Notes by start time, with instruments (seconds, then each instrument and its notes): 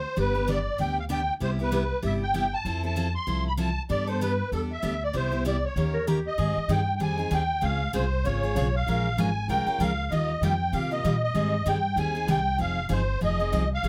Already playing: accordion C5
0.16 upright bass G1, steel-string acoustic guitar D3 G3 B3 D4 G4, accordion B4
0.35 steel-string acoustic guitar B3 D4 G4
0.47 steel-string acoustic guitar D3 G3 B3 D4 G4, accordion D5
0.78 upright bass D2, steel-string acoustic guitar D3 G3 B3 D4 G4, accordion G5
0.99 accordion F5
1.09 steel-string acoustic guitar D3 G3 B3 D4 G4, accordion G5
1.40 upright bass C2, steel-string acoustic guitar C3 G3 B3 E4 G4, accordion C5
1.59 steel-string acoustic guitar B3 E4 G4, accordion B4
1.72 steel-string acoustic guitar C3 G3 B3 E4 G4
2.02 upright bass G1, steel-string acoustic guitar C3 G3 B3 E4 G4, accordion E5
2.23 accordion G5
2.34 steel-string acoustic guitar C3 G3 B3 E4 G4
2.54 accordion A5
2.65 upright bass F2, steel-string acoustic guitar F3 C4 E4 A4
2.83 steel-string acoustic guitar C4 E4 A4, accordion A5
2.96 steel-string acoustic guitar F3 C4 E4 A4
3.15 accordion C6
3.27 upright bass C2, steel-string acoustic guitar F3 C4 E4 A4
3.48 accordion B5
3.57 steel-string acoustic guitar F3 C4 E4 A4, accordion A5
3.89 upright bass G2, steel-string acoustic guitar G3 B3 D4 A4, accordion D5
4.07 steel-string acoustic guitar B3 D4 A4, accordion C5
4.21 steel-string acoustic guitar G3 B3 D4 A4, accordion B4
4.52 upright bass E2, steel-string acoustic guitar G3 B3 D4 A4, accordion A4
4.72 accordion E5
4.82 upright bass D2, steel-string acoustic guitar G3 B3 D4 A4
5.03 accordion D5
5.13 upright bass C2, steel-string acoustic guitar C3 G3 B3 E4 G4, accordion C5
5.32 steel-string acoustic guitar B3 E4 G4
5.45 steel-string acoustic guitar C3 G3 B3 E4 G4, accordion D5
5.65 accordion C#5
5.76 upright bass D#2, steel-string acoustic guitar D#3 A#3 C#4 G4 A#4
5.94 clarinet A#4
6.07 steel-string acoustic guitar D#3 A#3 C#4 G4 A#4, clarinet G4
6.27 accordion D#5
6.38 upright bass G#2, steel-string acoustic guitar D#3 G3 C4 D#4 G#4
6.57 muted upright bass stroke
6.68 upright bass G2, steel-string acoustic guitar D#3 G3 C4 D#4 G#4, accordion G5
6.96 steel-string acoustic guitar D#3 G3 C4, accordion G5
7.00 upright bass F2, steel-string acoustic guitar D#4 G#4, accordion G#5
7.17 steel-string acoustic guitar C4 D#4 G#4
7.31 upright bass D#2, steel-string acoustic guitar D#3 G3 C4 D#4 G#4, accordion G5
7.61 upright bass C#2, steel-string acoustic guitar C#3 G#3 C4 F4 G#4, accordion F5
7.93 upright bass C2, steel-string acoustic guitar C#3 G#3 C4 F4 G#4, accordion C5
8.24 upright bass G#1, steel-string acoustic guitar C#3 G#3 C4 F4 G#4, accordion C#5
8.43 steel-string acoustic guitar C4 F4 G#4
8.56 upright bass B1, steel-string acoustic guitar C#3 G#3 C4 F4 G#4
8.76 accordion F5
8.87 upright bass A#1, steel-string acoustic guitar F3 G#3 C#4 F4 A#4
9.17 upright bass G#1, steel-string acoustic guitar F3 G#3 C#4 F4 A#4, accordion G#5
9.48 upright bass C2, steel-string acoustic guitar F3 G#3 C#4 F4 A#4, accordion G5
9.66 steel-string acoustic guitar C#4 F4 A#4, muted upright bass stroke
9.79 upright bass C#2, steel-string acoustic guitar F3 G#3 C#4 F4 A#4, accordion F5
10.10 upright bass D#2, steel-string acoustic guitar D#3 G3 A#3 F4 G4, accordion D#5
10.41 upright bass F2, steel-string acoustic guitar D#3 G3 A#3 F4 G4, accordion G5
10.73 upright bass C3, steel-string acoustic guitar D#3 G3 A#3 F4 G4, accordion F5
10.91 steel-string acoustic guitar A#3 F4 G4, accordion D#5
11.04 upright bass A#2, steel-string acoustic guitar D#3 G3 A#3 F4 G4
11.24 accordion D#5
11.34 upright bass G#2, steel-string acoustic guitar D#3 G3 C4 D#4 G#4
11.66 upright bass G2, steel-string acoustic guitar D#3 G3 C4 D#4 G#4, accordion G5
11.96 upright bass D#2, steel-string acoustic guitar D#3 G3 C4 D#4 G#4, accordion G#5
12.15 steel-string acoustic guitar C4 D#4 G#4
12.27 upright bass C2, steel-string acoustic guitar D#3 G3 C4 D#4 G#4, accordion G5
12.58 upright bass F1, steel-string acoustic guitar F3 C4 D#4 G#4, accordion F5
12.89 upright bass G1, steel-string acoustic guitar F3 C4 D#4 G#4, accordion C5
13.21 upright bass F1, steel-string acoustic guitar F3 C4 D#4 G#4, accordion D#5
13.39 steel-string acoustic guitar C4 D#4 G#4
13.52 upright bass C2, steel-string acoustic guitar F3 C4 D#4 G#4
13.74 accordion F5
13.83 upright bass A#1, steel-string acoustic guitar F3 G#3 C#4 F4 A#4